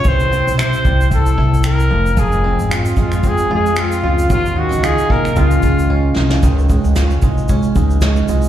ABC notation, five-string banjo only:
X:1
M:4/4
L:1/16
Q:"Swing 16ths" 1/4=113
K:Db
V:1 name="Five-string banjo"
=E,2 C2 =E2 =G,2 C2 E2 C2 F,2 | F,2 C2 F2 A,2 C2 F2 C2 F2 | G,2 E2 F2 B,2 E,2 F2 D2 E F | E,2 A,2 D2 A,2 D2 A,2 D2 A,2 |]